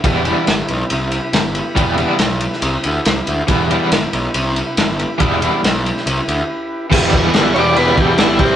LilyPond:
<<
  \new Staff \with { instrumentName = "Transistor combo organ" } { \time 4/4 \key e \minor \tempo 4 = 140 r1 | r1 | r1 | r1 |
r4. <cis'' d''>8 b'8 g'8 e'8 g'8 | }
  \new Staff \with { instrumentName = "Transistor combo organ" } { \time 4/4 \key e \minor <e' g' b'>1~ | <e' g' b'>1 | <e' g' b'>1~ | <e' g' b'>1 |
<e' g' b'>2.~ <e' g' b'>8 <e' g' c''>8 | }
  \new Staff \with { instrumentName = "Overdriven electric guitar" } { \time 4/4 \key e \minor <e g b e'>8 <e g b e'>8 r2. | <e g b e'>8 <e g b e'>8 r2. | <e g b e'>8 <e g b e'>8 r2. | <e g b e'>8 <e g b e'>8 r2. |
<e g b e'>8 <g b e'>8 <e g b e'>8 <e g b e'>8 <e g b e'>8 <g b e'>8 <e g b e'>8 <c g c' e'>8 | }
  \new Staff \with { instrumentName = "Picked electric bass" } { \clef bass \time 4/4 \key e \minor e,,4 g,,8 b,,8 c,4 g,,4 | e,,4 b,,4 c,8 d,8 c,8 d,8 | e,,4 g,,8 b,,8 c,4 g,,4 | e,,4 b,,4 c,8 d,8 r4 |
e,,4 g,,8 e,,8 e,,4 g,,8 c,8 | }
  \new DrumStaff \with { instrumentName = "Drums" } \drummode { \time 4/4 <bd cymr>8 cymr8 <cymr sn>8 cymr8 cymr8 cymr8 <cymr sn>8 cymr8 | <bd cymr>8 cymr8 <cymr sn>8 cymr16 sn16 cymr8 cymr8 <cymr sn>8 cymr8 | <bd cymr>8 cymr8 <cymr sn>8 cymr8 cymr8 cymr8 <cymr sn>8 cymr8 | <bd cymr>8 cymr8 <cymr sn>8 cymr16 sn16 cymr8 cymr8 r4 |
<cymc bd>8 <cymc bd>8 <cymc sn>8 cymc8 cymc8 <cymc bd>8 <cymc sn>8 <cymc bd>8 | }
>>